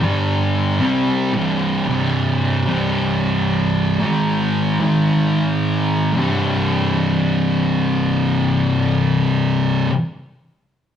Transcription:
0.01 G2 D3 G3
0.80 C3 G3 C4
1.34 C2 G2 C3
1.86 C2 G2 C3
2.66 C2 G2 C3
4.00 G#2 D#3 G#3
4.80 G#2 D#3 G#3
6.13 C2 G2
6.17 C3

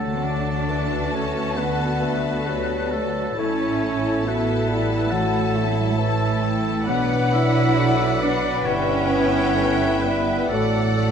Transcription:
Already playing: D2 D3 F#3 A3 F#4 A4 F#5 A5
0.23 A3 D4 D5
0.68 E3 A4 B4 D5
1.13 A3 C#4 A4 C#5
1.57 D3 B3 D4 B4 F#5
2.02 A3 A4 E5
2.46 F#3 G4 A4 D5
2.92 A3 F#4 A4
3.37 A1 A2 A3 C#4 E4 A4 C#5 E5 A5
3.83 A3
4.25 A3 B3 F#4 A4 B4 E5
4.68 G3 A3 E4
5.11 E3 F#3 A3 F#4 A4 F#5
5.55 A3 E4 E5
5.63 B3
5.72 A3
5.80 G3
5.90 A3
5.97 E3 A3 A4 C#5 A5
6.41 A3 G5
6.87 B1 B2 F#3 B3 D4 B4 D5 F#5
7.33 E4 E5
7.79 F#4 A4
8.21 B3 D4 B4 D5
8.65 G1 G2 G3 C#4 E4 C#5 E5 G5
8.69 B4
9.10 B3
9.55 A3 G4 E5
10.01 G3 B3 B4
10.49 A1 A2 F#3 A3 A4 D5
10.53 F#4 F#5
10.99 A3

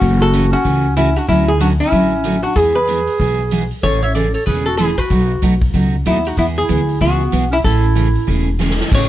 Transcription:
Already playing: C#4 F#4
0.01 F#1 C#3 E3 A3 C#4 F#4, kick, open hi-hat
0.20 F#4 A4
0.33 C#3 E3 A3 C#4 F#4, closed hi-hat
0.52 C#4 F#4, open hi-hat
0.65 C#2 C#3 E3 A3 C#4 F#4, kick, open hi-hat
0.96 C#3 E3 A3 C#4 E4 F#4, closed hi-hat
1.16 D4 F#4, open hi-hat
1.28 D2 D3 F#3 A3 C#4 E4 F#4, kick, open hi-hat
1.47 E4 G#4
1.60 D3 F#3 A3 C#4 D4 F#4, closed hi-hat
1.80 C#4 E4, open hi-hat
1.91 A1 D3 F#3 A3 C#4 F#4, kick, open hi-hat
2.24 D3 F#3 A3 C#4 F#4, closed hi-hat
2.43 D4 F#4, open hi-hat
2.56 E2 E3 G#3 B3 E4 G#4, kick, open hi-hat
2.75 G#4 B4
2.87 E3 G#3 B3 E4 G#4, closed hi-hat
3.07 open hi-hat
3.20 B1 E3 G#3 B3 E4 G#4, kick, open hi-hat
3.51 E3 G#3 B3 E4 G#4, closed hi-hat
3.71 open hi-hat
3.82 A1 C#3 E3 A3 C#4 G#4 A4 C#5, kick, open hi-hat
4.02 C#5 E5
4.15 C#3 E3 A3 C#4 G#4 A4 D5, closed hi-hat
4.34 A4 C#5, open hi-hat
4.46 E1 C#3 E3 A3 C#4 G#4 B4, kick, open hi-hat
4.66 F#4 A4
4.77 C#3 E3 A3 C#4 E4 G#4, closed hi-hat
4.98 F#4 B4, kick, open hi-hat
5.10 B1 B2 F#3 A3 D#4 F#4, kick, open hi-hat
5.42 B1 B2 F#3 A3 D#4 F#4, closed hi-hat
5.62 kick, open hi-hat
5.74 C#2 B2 F#3 A3 D#4 F#4, kick, open hi-hat
6.06 D#2 B2 F#3 A3 B3 D#4 E4 F#4, closed hi-hat
6.25 D#4 F#4, open hi-hat
6.37 E2 E3 G#3 B3 E4 G#4, kick, open hi-hat
6.57 E4 G#4
6.68 D2 E3 G#3 B3 E4 G#4, closed hi-hat
6.89 open hi-hat
7.00 C#2 E3 G#3 B3 E4 F#4 G#4, kick, open hi-hat
7.32 B1 E3 G#3 B3 E4 G#4, closed hi-hat
7.51 C#4 E4, open hi-hat
7.63 A1 C#3 E3 A3 C#4 E4 G#4 A4, kick, open hi-hat
7.95 C#3 E3 A3 C#4 G#4, closed hi-hat
8.15 open hi-hat
8.27 E1 C#3 E3 A3 C#4 G#4, kick, open hi-hat
8.59 C#3 E3 A3 C#4 G#4, snare
8.70 snare
8.81 snare
8.91 A1 C#3 E3 A3 C#4 G#4 C#5, kick, crash

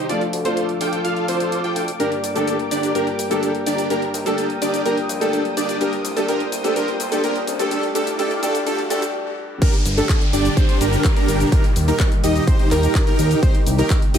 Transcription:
Already playing: C3 G3 C4 D#4 G4
0.09 F3 A3 D4 F4 A4 D5 F5 D6, closed hi-hat
0.21 closed hi-hat
0.33 D2, open hi-hat
0.44 F3 A3 D4 F4 A4 C5, closed hi-hat
0.57 closed hi-hat
0.69 closed hi-hat
0.81 D2 F4 A4 G5, open hi-hat
0.93 closed hi-hat
1.05 F4 A4 F5, closed hi-hat
1.17 closed hi-hat
1.28 D2 F4 A4 C5, open hi-hat
1.40 closed hi-hat
1.52 closed hi-hat
1.64 F4 A4 G5, closed hi-hat
1.76 D2, open hi-hat
1.88 closed hi-hat
1.99 G2 G3 A#3 D4 G4 A#4 G5, closed hi-hat, riser, shaker
2.12 closed hi-hat
2.24 G1, open hi-hat, shaker
2.34 G2 G3 A#3 D4 G4 A4, closed hi-hat, shaker
2.48 closed hi-hat, shaker
2.59 closed hi-hat
2.71 G1 D4 G4 D5, open hi-hat, shaker
2.83 closed hi-hat, shaker
2.94 G2 G3 A#3 D4 G4 A#4, closed hi-hat, shaker
3.07 closed hi-hat
3.19 G1, open hi-hat, shaker
3.29 G2 G3 A#3 D4 G4 A4, closed hi-hat, shaker
3.43 closed hi-hat, shaker
3.55 closed hi-hat
3.66 G1 D4 G4 D5, open hi-hat, shaker
3.78 closed hi-hat, shaker
3.90 G2 G3 A#3 D4 G4 A#4 G5 D#6, closed hi-hat, shaker
4.02 closed hi-hat
4.14 D#2, open hi-hat, shaker
4.25 G2 G3 A#3 D4 G4 A4, closed hi-hat, shaker
4.38 closed hi-hat, shaker
4.50 closed hi-hat
4.62 D#2 D4 G4 D5, open hi-hat, shaker
4.74 closed hi-hat, shaker
4.85 G2 G3 A#3 D4 G4 A#4, closed hi-hat, shaker
4.97 closed hi-hat
5.09 D#2, open hi-hat, shaker
5.20 G2 G3 A#3 D4 G4 A4, closed hi-hat, shaker
5.33 closed hi-hat, shaker
5.45 closed hi-hat
5.57 D#2 D4 G4 D5, open hi-hat, shaker
5.69 closed hi-hat, shaker
5.80 G2 G3 A#3 D4 G4 A#4 C5, closed hi-hat, shaker
5.93 closed hi-hat
6.05 C2, open hi-hat, shaker
6.15 G2 G3 A#3 D4 G4 A4, closed hi-hat, shaker
6.28 G2 G3 A#3 D4 G4 A#4, closed hi-hat, shaker
6.40 closed hi-hat
6.52 C2, open hi-hat, shaker
6.63 G2 G3 A#3 D4 G4 A4, closed hi-hat, shaker
6.76 G2 G3 A#3 D4 G4 A#4, closed hi-hat, shaker
6.88 closed hi-hat
7.00 C2, open hi-hat, shaker
7.11 G2 G3 A#3 D4 G4 A4, closed hi-hat, shaker
7.23 G2 G3 A#3 D4 G4 A#4, closed hi-hat, shaker
7.36 closed hi-hat
7.47 C2, open hi-hat, shaker
7.58 G2 G3 A#3 D4 G4 A4, closed hi-hat, shaker
7.71 G2 G3 A3 D4 G4 A4 D5 F5 D6, closed hi-hat, shaker
7.83 closed hi-hat
7.95 D2 G2 G3 A3 D4 G4 A4, open hi-hat, shaker
8.07 closed hi-hat, shaker
8.18 G2 G3 A3 D4 G4 A4, closed hi-hat, shaker
8.31 closed hi-hat
8.42 D2 G2 G3 A3 D4 G4 A4, open hi-hat, shaker
8.55 closed hi-hat, shaker
8.66 G2 G3 A3 D4 G4 A4, closed hi-hat, shaker
8.79 closed hi-hat
8.90 D2 G2 G3 A3 D4 G4 A4, open hi-hat, shaker
9.02 closed hi-hat, shaker
9.62 A#2 D3 G3 D4 G4 A#4, kick, closed hi-hat, crash, downlifter, shaker
9.74 closed hi-hat
9.86 G1, open hi-hat, shaker
9.97 D4 G4 A4, closed hi-hat, shaker
10.09 kick, clap, closed hi-hat, shaker
10.21 closed hi-hat
10.33 G1 D4 G4 D5, open hi-hat, shaker
10.45 closed hi-hat, shaker
10.57 D4 G4 C5, kick, closed hi-hat, shaker
10.69 closed hi-hat
10.81 G1 D4 G4 A#4, open hi-hat, shaker
10.93 closed hi-hat, shaker
11.05 kick, clap, closed hi-hat, shaker
11.16 D4 G4 A#4, closed hi-hat
11.28 G1, open hi-hat, shaker
11.40 closed hi-hat, shaker
11.52 D#3 D#4 G4 A#4, kick, closed hi-hat, shaker
11.64 closed hi-hat
11.76 D#2, open hi-hat, shaker
11.88 D#4 G4 A#4, closed hi-hat, shaker
12.00 kick, clap, closed hi-hat, shaker
12.12 closed hi-hat
12.24 D#2 D#4 G4 D#5, open hi-hat, shaker
12.36 closed hi-hat, shaker
12.47 D#4 G4 C5, kick, closed hi-hat, shaker
12.59 closed hi-hat
12.71 D#2 D#4 G4 A#4, clap, open hi-hat, shaker
12.83 closed hi-hat, shaker
12.95 kick, clap, closed hi-hat, shaker
13.07 D#4 G4 A#4, closed hi-hat
13.19 D#2, open hi-hat, shaker
13.31 closed hi-hat, shaker
13.43 C3 D#4 G4 C5, kick, closed hi-hat, shaker
13.55 closed hi-hat
13.66 C2, open hi-hat, shaker
13.78 D#4 G4 A#4, closed hi-hat, shaker
13.90 kick, clap, closed hi-hat, shaker
14.02 closed hi-hat
14.14 C2 D#4 G4 D#5, open hi-hat, shaker

